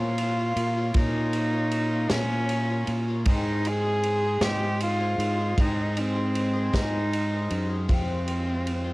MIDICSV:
0, 0, Header, 1, 6, 480
1, 0, Start_track
1, 0, Key_signature, -4, "major"
1, 0, Tempo, 772201
1, 591, Time_signature, 6, 3, 24, 8
1, 5553, End_track
2, 0, Start_track
2, 0, Title_t, "Harmonium"
2, 0, Program_c, 0, 20
2, 0, Note_on_c, 0, 65, 71
2, 0, Note_on_c, 0, 70, 62
2, 0, Note_on_c, 0, 73, 63
2, 0, Note_on_c, 0, 82, 76
2, 2005, Note_off_c, 0, 65, 0
2, 2007, Note_off_c, 0, 82, 0
2, 2008, Note_off_c, 0, 70, 0
2, 2008, Note_off_c, 0, 73, 0
2, 2032, Note_on_c, 0, 84, 85
2, 2033, Note_on_c, 0, 56, 67
2, 2034, Note_on_c, 0, 75, 66
2, 2035, Note_on_c, 0, 72, 69
2, 4886, Note_off_c, 0, 72, 0
2, 4886, Note_off_c, 0, 75, 0
2, 4902, Note_on_c, 0, 77, 66
2, 4904, Note_on_c, 0, 72, 63
2, 5553, Note_off_c, 0, 56, 0
2, 5553, Note_off_c, 0, 72, 0
2, 5553, Note_off_c, 0, 77, 0
2, 5553, Note_off_c, 0, 84, 0
2, 5553, End_track
3, 0, Start_track
3, 0, Title_t, "Cello"
3, 0, Program_c, 1, 42
3, 0, Note_on_c, 1, 65, 109
3, 600, Note_on_c, 1, 63, 100
3, 610, Note_off_c, 1, 65, 0
3, 1314, Note_on_c, 1, 61, 107
3, 1323, Note_off_c, 1, 63, 0
3, 1851, Note_off_c, 1, 61, 0
3, 2034, Note_on_c, 1, 63, 94
3, 2277, Note_on_c, 1, 68, 119
3, 2287, Note_off_c, 1, 63, 0
3, 2757, Note_on_c, 1, 67, 104
3, 2766, Note_off_c, 1, 68, 0
3, 2993, Note_off_c, 1, 67, 0
3, 2999, Note_on_c, 1, 65, 105
3, 3482, Note_on_c, 1, 63, 92
3, 3491, Note_off_c, 1, 65, 0
3, 3721, Note_on_c, 1, 60, 98
3, 3730, Note_off_c, 1, 63, 0
3, 4195, Note_on_c, 1, 63, 107
3, 4204, Note_off_c, 1, 60, 0
3, 4731, Note_off_c, 1, 63, 0
3, 4913, Note_on_c, 1, 60, 85
3, 5553, Note_off_c, 1, 60, 0
3, 5553, End_track
4, 0, Start_track
4, 0, Title_t, "Twelve-string acoustic guitar"
4, 0, Program_c, 2, 25
4, 0, Note_on_c, 2, 46, 78
4, 0, Note_on_c, 2, 53, 74
4, 0, Note_on_c, 2, 58, 80
4, 0, Note_on_c, 2, 61, 79
4, 0, Note_on_c, 2, 65, 84
4, 109, Note_off_c, 2, 53, 0
4, 112, Note_off_c, 2, 46, 0
4, 116, Note_on_c, 2, 53, 63
4, 117, Note_off_c, 2, 58, 0
4, 117, Note_off_c, 2, 61, 0
4, 118, Note_off_c, 2, 65, 0
4, 124, Note_on_c, 2, 58, 68
4, 128, Note_on_c, 2, 61, 63
4, 136, Note_on_c, 2, 65, 65
4, 233, Note_off_c, 2, 53, 0
4, 235, Note_off_c, 2, 65, 0
4, 237, Note_off_c, 2, 58, 0
4, 239, Note_off_c, 2, 61, 0
4, 243, Note_on_c, 2, 65, 56
4, 253, Note_on_c, 2, 61, 51
4, 260, Note_on_c, 2, 58, 45
4, 469, Note_off_c, 2, 65, 0
4, 477, Note_on_c, 2, 65, 45
4, 482, Note_off_c, 2, 61, 0
4, 485, Note_off_c, 2, 58, 0
4, 489, Note_on_c, 2, 61, 46
4, 491, Note_on_c, 2, 58, 40
4, 594, Note_off_c, 2, 58, 0
4, 594, Note_off_c, 2, 65, 0
4, 595, Note_off_c, 2, 61, 0
4, 597, Note_on_c, 2, 46, 65
4, 600, Note_on_c, 2, 53, 75
4, 601, Note_on_c, 2, 58, 74
4, 602, Note_on_c, 2, 61, 78
4, 605, Note_on_c, 2, 65, 81
4, 826, Note_off_c, 2, 53, 0
4, 831, Note_off_c, 2, 58, 0
4, 833, Note_off_c, 2, 46, 0
4, 834, Note_on_c, 2, 53, 60
4, 836, Note_off_c, 2, 61, 0
4, 837, Note_off_c, 2, 65, 0
4, 839, Note_on_c, 2, 58, 63
4, 845, Note_on_c, 2, 61, 55
4, 849, Note_on_c, 2, 65, 65
4, 945, Note_off_c, 2, 65, 0
4, 952, Note_off_c, 2, 53, 0
4, 953, Note_on_c, 2, 65, 53
4, 954, Note_off_c, 2, 58, 0
4, 957, Note_off_c, 2, 61, 0
4, 964, Note_on_c, 2, 61, 43
4, 972, Note_on_c, 2, 58, 44
4, 1178, Note_off_c, 2, 65, 0
4, 1186, Note_on_c, 2, 65, 52
4, 1191, Note_off_c, 2, 61, 0
4, 1199, Note_on_c, 2, 61, 47
4, 1201, Note_off_c, 2, 58, 0
4, 1209, Note_on_c, 2, 58, 45
4, 1308, Note_off_c, 2, 65, 0
4, 1312, Note_off_c, 2, 58, 0
4, 1314, Note_off_c, 2, 61, 0
4, 1314, Note_on_c, 2, 46, 72
4, 1319, Note_on_c, 2, 53, 75
4, 1320, Note_on_c, 2, 58, 79
4, 1324, Note_on_c, 2, 61, 85
4, 1325, Note_on_c, 2, 65, 74
4, 1547, Note_off_c, 2, 53, 0
4, 1552, Note_off_c, 2, 46, 0
4, 1554, Note_off_c, 2, 58, 0
4, 1554, Note_on_c, 2, 53, 58
4, 1556, Note_off_c, 2, 61, 0
4, 1557, Note_off_c, 2, 65, 0
4, 1562, Note_on_c, 2, 58, 61
4, 1568, Note_on_c, 2, 61, 65
4, 1573, Note_on_c, 2, 65, 67
4, 1670, Note_off_c, 2, 65, 0
4, 1672, Note_off_c, 2, 53, 0
4, 1675, Note_off_c, 2, 58, 0
4, 1678, Note_off_c, 2, 61, 0
4, 1678, Note_on_c, 2, 65, 49
4, 1689, Note_on_c, 2, 61, 49
4, 1697, Note_on_c, 2, 58, 47
4, 1906, Note_off_c, 2, 65, 0
4, 1914, Note_on_c, 2, 65, 47
4, 1919, Note_off_c, 2, 61, 0
4, 1923, Note_off_c, 2, 58, 0
4, 1927, Note_on_c, 2, 61, 41
4, 1937, Note_on_c, 2, 58, 36
4, 2031, Note_off_c, 2, 65, 0
4, 2034, Note_on_c, 2, 44, 70
4, 2038, Note_off_c, 2, 61, 0
4, 2038, Note_on_c, 2, 51, 76
4, 2039, Note_off_c, 2, 58, 0
4, 2041, Note_on_c, 2, 56, 80
4, 2042, Note_on_c, 2, 60, 78
4, 2044, Note_on_c, 2, 63, 81
4, 2048, Note_on_c, 2, 68, 85
4, 2265, Note_off_c, 2, 56, 0
4, 2268, Note_off_c, 2, 60, 0
4, 2271, Note_off_c, 2, 44, 0
4, 2272, Note_on_c, 2, 56, 55
4, 2273, Note_off_c, 2, 51, 0
4, 2275, Note_on_c, 2, 60, 62
4, 2276, Note_off_c, 2, 63, 0
4, 2278, Note_off_c, 2, 68, 0
4, 2284, Note_on_c, 2, 63, 69
4, 2285, Note_on_c, 2, 68, 60
4, 2384, Note_off_c, 2, 68, 0
4, 2390, Note_off_c, 2, 56, 0
4, 2390, Note_off_c, 2, 63, 0
4, 2392, Note_off_c, 2, 60, 0
4, 2392, Note_on_c, 2, 68, 54
4, 2397, Note_on_c, 2, 63, 48
4, 2400, Note_on_c, 2, 60, 47
4, 2405, Note_on_c, 2, 56, 40
4, 2624, Note_off_c, 2, 68, 0
4, 2632, Note_on_c, 2, 68, 52
4, 2633, Note_off_c, 2, 60, 0
4, 2633, Note_off_c, 2, 63, 0
4, 2637, Note_off_c, 2, 56, 0
4, 2639, Note_on_c, 2, 63, 52
4, 2640, Note_on_c, 2, 60, 49
4, 2650, Note_on_c, 2, 56, 47
4, 2746, Note_on_c, 2, 44, 72
4, 2747, Note_off_c, 2, 60, 0
4, 2748, Note_off_c, 2, 56, 0
4, 2750, Note_off_c, 2, 68, 0
4, 2751, Note_off_c, 2, 63, 0
4, 2751, Note_on_c, 2, 51, 80
4, 2755, Note_on_c, 2, 56, 77
4, 2755, Note_on_c, 2, 60, 74
4, 2759, Note_on_c, 2, 63, 89
4, 2983, Note_off_c, 2, 56, 0
4, 2987, Note_off_c, 2, 44, 0
4, 2990, Note_off_c, 2, 51, 0
4, 2990, Note_on_c, 2, 56, 54
4, 2992, Note_off_c, 2, 60, 0
4, 2993, Note_off_c, 2, 63, 0
4, 2999, Note_on_c, 2, 60, 60
4, 3006, Note_on_c, 2, 63, 61
4, 3009, Note_on_c, 2, 68, 71
4, 3095, Note_off_c, 2, 68, 0
4, 3101, Note_off_c, 2, 63, 0
4, 3102, Note_on_c, 2, 68, 60
4, 3106, Note_off_c, 2, 60, 0
4, 3108, Note_on_c, 2, 63, 55
4, 3109, Note_off_c, 2, 56, 0
4, 3113, Note_on_c, 2, 60, 51
4, 3120, Note_on_c, 2, 56, 45
4, 3335, Note_off_c, 2, 68, 0
4, 3342, Note_on_c, 2, 68, 49
4, 3343, Note_off_c, 2, 63, 0
4, 3347, Note_off_c, 2, 60, 0
4, 3351, Note_on_c, 2, 63, 48
4, 3354, Note_off_c, 2, 56, 0
4, 3355, Note_on_c, 2, 60, 42
4, 3362, Note_on_c, 2, 56, 37
4, 3465, Note_off_c, 2, 68, 0
4, 3467, Note_off_c, 2, 56, 0
4, 3467, Note_on_c, 2, 44, 72
4, 3469, Note_off_c, 2, 63, 0
4, 3470, Note_off_c, 2, 60, 0
4, 3474, Note_on_c, 2, 51, 79
4, 3474, Note_on_c, 2, 56, 83
4, 3478, Note_on_c, 2, 60, 77
4, 3478, Note_on_c, 2, 63, 68
4, 3479, Note_on_c, 2, 68, 90
4, 3692, Note_off_c, 2, 56, 0
4, 3699, Note_on_c, 2, 56, 62
4, 3701, Note_off_c, 2, 60, 0
4, 3703, Note_off_c, 2, 63, 0
4, 3708, Note_off_c, 2, 44, 0
4, 3708, Note_on_c, 2, 60, 58
4, 3710, Note_off_c, 2, 68, 0
4, 3711, Note_off_c, 2, 51, 0
4, 3711, Note_on_c, 2, 63, 57
4, 3717, Note_on_c, 2, 68, 66
4, 3815, Note_off_c, 2, 68, 0
4, 3820, Note_off_c, 2, 63, 0
4, 3823, Note_on_c, 2, 68, 49
4, 3824, Note_off_c, 2, 56, 0
4, 3828, Note_off_c, 2, 60, 0
4, 3828, Note_on_c, 2, 63, 46
4, 3835, Note_on_c, 2, 60, 44
4, 3841, Note_on_c, 2, 56, 39
4, 4056, Note_off_c, 2, 68, 0
4, 4063, Note_on_c, 2, 68, 59
4, 4064, Note_off_c, 2, 63, 0
4, 4068, Note_off_c, 2, 60, 0
4, 4072, Note_on_c, 2, 63, 46
4, 4074, Note_off_c, 2, 56, 0
4, 4075, Note_on_c, 2, 60, 43
4, 4081, Note_on_c, 2, 56, 46
4, 4183, Note_off_c, 2, 56, 0
4, 4183, Note_off_c, 2, 60, 0
4, 4183, Note_on_c, 2, 44, 63
4, 4183, Note_on_c, 2, 51, 75
4, 4186, Note_off_c, 2, 63, 0
4, 4186, Note_off_c, 2, 68, 0
4, 4190, Note_on_c, 2, 60, 83
4, 4191, Note_on_c, 2, 56, 76
4, 4193, Note_on_c, 2, 63, 79
4, 4195, Note_on_c, 2, 68, 80
4, 4414, Note_off_c, 2, 56, 0
4, 4421, Note_off_c, 2, 60, 0
4, 4422, Note_on_c, 2, 56, 60
4, 4425, Note_off_c, 2, 44, 0
4, 4426, Note_off_c, 2, 51, 0
4, 4427, Note_off_c, 2, 63, 0
4, 4428, Note_on_c, 2, 60, 58
4, 4429, Note_off_c, 2, 68, 0
4, 4434, Note_on_c, 2, 63, 66
4, 4437, Note_on_c, 2, 68, 62
4, 4538, Note_off_c, 2, 68, 0
4, 4545, Note_off_c, 2, 56, 0
4, 4545, Note_off_c, 2, 63, 0
4, 4546, Note_on_c, 2, 68, 54
4, 4548, Note_off_c, 2, 60, 0
4, 4553, Note_on_c, 2, 63, 49
4, 4557, Note_on_c, 2, 60, 41
4, 4560, Note_on_c, 2, 56, 44
4, 4774, Note_off_c, 2, 68, 0
4, 4781, Note_off_c, 2, 63, 0
4, 4782, Note_on_c, 2, 68, 45
4, 4784, Note_off_c, 2, 60, 0
4, 4789, Note_on_c, 2, 63, 42
4, 4791, Note_off_c, 2, 56, 0
4, 4792, Note_on_c, 2, 60, 38
4, 4799, Note_on_c, 2, 56, 36
4, 4900, Note_on_c, 2, 41, 65
4, 4902, Note_on_c, 2, 48, 70
4, 4903, Note_off_c, 2, 56, 0
4, 4903, Note_off_c, 2, 60, 0
4, 4905, Note_off_c, 2, 68, 0
4, 4906, Note_on_c, 2, 53, 72
4, 4908, Note_off_c, 2, 63, 0
4, 4910, Note_on_c, 2, 56, 70
4, 4910, Note_on_c, 2, 60, 69
4, 4914, Note_on_c, 2, 65, 77
4, 5141, Note_off_c, 2, 53, 0
4, 5144, Note_off_c, 2, 41, 0
4, 5144, Note_off_c, 2, 56, 0
4, 5145, Note_off_c, 2, 48, 0
4, 5149, Note_off_c, 2, 60, 0
4, 5149, Note_on_c, 2, 53, 54
4, 5151, Note_off_c, 2, 65, 0
4, 5151, Note_on_c, 2, 56, 53
4, 5158, Note_on_c, 2, 60, 56
4, 5164, Note_on_c, 2, 65, 59
4, 5252, Note_off_c, 2, 65, 0
4, 5260, Note_off_c, 2, 60, 0
4, 5260, Note_on_c, 2, 65, 53
4, 5264, Note_off_c, 2, 56, 0
4, 5267, Note_off_c, 2, 53, 0
4, 5268, Note_on_c, 2, 60, 43
4, 5272, Note_on_c, 2, 56, 43
4, 5275, Note_on_c, 2, 53, 40
4, 5489, Note_off_c, 2, 65, 0
4, 5496, Note_off_c, 2, 60, 0
4, 5496, Note_on_c, 2, 65, 56
4, 5503, Note_off_c, 2, 56, 0
4, 5503, Note_on_c, 2, 60, 51
4, 5507, Note_off_c, 2, 53, 0
4, 5511, Note_on_c, 2, 56, 44
4, 5514, Note_on_c, 2, 53, 42
4, 5553, Note_off_c, 2, 53, 0
4, 5553, Note_off_c, 2, 56, 0
4, 5553, Note_off_c, 2, 60, 0
4, 5553, Note_off_c, 2, 65, 0
4, 5553, End_track
5, 0, Start_track
5, 0, Title_t, "Fingered electric bass"
5, 0, Program_c, 3, 33
5, 0, Note_on_c, 3, 46, 83
5, 327, Note_off_c, 3, 46, 0
5, 350, Note_on_c, 3, 46, 83
5, 566, Note_off_c, 3, 46, 0
5, 591, Note_on_c, 3, 46, 86
5, 1285, Note_off_c, 3, 46, 0
5, 1309, Note_on_c, 3, 46, 94
5, 1764, Note_off_c, 3, 46, 0
5, 1787, Note_on_c, 3, 46, 90
5, 2028, Note_off_c, 3, 46, 0
5, 2028, Note_on_c, 3, 44, 90
5, 2723, Note_off_c, 3, 44, 0
5, 2740, Note_on_c, 3, 44, 91
5, 3199, Note_off_c, 3, 44, 0
5, 3221, Note_on_c, 3, 44, 92
5, 3440, Note_off_c, 3, 44, 0
5, 3467, Note_on_c, 3, 44, 81
5, 4162, Note_off_c, 3, 44, 0
5, 4188, Note_on_c, 3, 44, 92
5, 4643, Note_off_c, 3, 44, 0
5, 4666, Note_on_c, 3, 42, 82
5, 4907, Note_off_c, 3, 42, 0
5, 4907, Note_on_c, 3, 41, 86
5, 5553, Note_off_c, 3, 41, 0
5, 5553, End_track
6, 0, Start_track
6, 0, Title_t, "Drums"
6, 111, Note_on_c, 9, 51, 65
6, 173, Note_off_c, 9, 51, 0
6, 351, Note_on_c, 9, 51, 61
6, 413, Note_off_c, 9, 51, 0
6, 585, Note_on_c, 9, 51, 77
6, 589, Note_on_c, 9, 36, 109
6, 647, Note_off_c, 9, 51, 0
6, 651, Note_off_c, 9, 36, 0
6, 827, Note_on_c, 9, 51, 57
6, 889, Note_off_c, 9, 51, 0
6, 1066, Note_on_c, 9, 51, 57
6, 1128, Note_off_c, 9, 51, 0
6, 1303, Note_on_c, 9, 38, 99
6, 1303, Note_on_c, 9, 51, 77
6, 1366, Note_off_c, 9, 38, 0
6, 1366, Note_off_c, 9, 51, 0
6, 1547, Note_on_c, 9, 51, 59
6, 1609, Note_off_c, 9, 51, 0
6, 1785, Note_on_c, 9, 51, 53
6, 1847, Note_off_c, 9, 51, 0
6, 2022, Note_on_c, 9, 51, 85
6, 2027, Note_on_c, 9, 36, 115
6, 2084, Note_off_c, 9, 51, 0
6, 2089, Note_off_c, 9, 36, 0
6, 2267, Note_on_c, 9, 51, 56
6, 2329, Note_off_c, 9, 51, 0
6, 2507, Note_on_c, 9, 51, 58
6, 2569, Note_off_c, 9, 51, 0
6, 2742, Note_on_c, 9, 38, 108
6, 2742, Note_on_c, 9, 51, 78
6, 2805, Note_off_c, 9, 38, 0
6, 2805, Note_off_c, 9, 51, 0
6, 2986, Note_on_c, 9, 51, 67
6, 3048, Note_off_c, 9, 51, 0
6, 3231, Note_on_c, 9, 51, 60
6, 3293, Note_off_c, 9, 51, 0
6, 3467, Note_on_c, 9, 36, 104
6, 3470, Note_on_c, 9, 51, 88
6, 3530, Note_off_c, 9, 36, 0
6, 3532, Note_off_c, 9, 51, 0
6, 3709, Note_on_c, 9, 51, 60
6, 3771, Note_off_c, 9, 51, 0
6, 3948, Note_on_c, 9, 51, 58
6, 4010, Note_off_c, 9, 51, 0
6, 4187, Note_on_c, 9, 36, 73
6, 4191, Note_on_c, 9, 38, 103
6, 4191, Note_on_c, 9, 51, 77
6, 4250, Note_off_c, 9, 36, 0
6, 4253, Note_off_c, 9, 38, 0
6, 4253, Note_off_c, 9, 51, 0
6, 4433, Note_on_c, 9, 51, 66
6, 4495, Note_off_c, 9, 51, 0
6, 4664, Note_on_c, 9, 51, 57
6, 4726, Note_off_c, 9, 51, 0
6, 4905, Note_on_c, 9, 51, 80
6, 4906, Note_on_c, 9, 36, 108
6, 4967, Note_off_c, 9, 51, 0
6, 4968, Note_off_c, 9, 36, 0
6, 5144, Note_on_c, 9, 51, 55
6, 5206, Note_off_c, 9, 51, 0
6, 5387, Note_on_c, 9, 51, 49
6, 5449, Note_off_c, 9, 51, 0
6, 5553, End_track
0, 0, End_of_file